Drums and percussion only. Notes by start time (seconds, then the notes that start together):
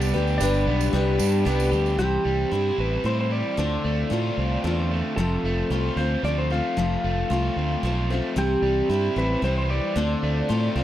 0.02 tambourine
0.27 tambourine
0.40 tambourine
0.54 tambourine
0.81 tambourine
1.19 tambourine
1.47 tambourine
1.60 tambourine
1.73 tambourine
1.86 tambourine